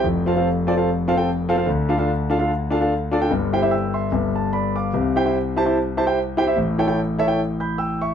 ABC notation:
X:1
M:4/4
L:1/16
Q:"Swing" 1/4=147
K:C
V:1 name="Grand piano"
z2 [CFAf] [CFAf] z2 [CFAd] [CFAf] z2 [CFAf] [CFAg] z2 [CFAf] [CFAf] | z2 [DFAf] [DFAf] z2 [DFAf] [DFAf] z2 [DFAf] [DFAf] z2 [DFAd] [DFAg] | z2 [EGcg] [EGce] [ge']2 [ec']4 a2 [db]2 [fd']2- | [fd']2 [EGcg] [EGcg] z2 [EGca] [EGca] z2 [EGca] [EGcg] z2 [EGcg] [EGce] |
z2 [EA^cg] [EAcg] z2 [EAce] [EAcg] z2 [bg']2 [ge']2 [e^c']2 |]
V:2 name="Grand piano" clef=bass
[F,,,F,,]16 | [D,,D,]16 | [G,,,G,,]8 [G,,,G,,]8 | [C,,C,]16 |
[A,,,A,,]16 |]